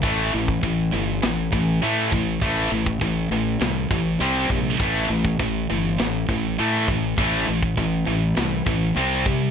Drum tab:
HH |o---o---o---o---|o---o---o---o---|o---o---o---o---|o---o---o---o---|
SD |--------o-------|--------o-------|--------o-------|--------o-------|
BD |o--oo-----o---o-|o--oo-----o---o-|o--oo-----o---o-|o--oo-----o---o-|